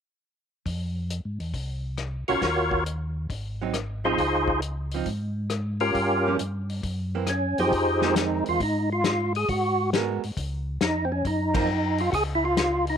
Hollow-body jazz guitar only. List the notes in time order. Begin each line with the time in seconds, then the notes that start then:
2.29 D#3 A#3 C#4 F#4
3.61 F#3 C4 D#4
4.04 F3 C4 D#4
4.94 F3 C4 D#4
6.26 F3 A#3 C#4
7.15 E3 A#3 C4
8.02 D#3 G#3 C4
9.94 G#3 B3 F#4 A#4
11.54 F3 A#3 C4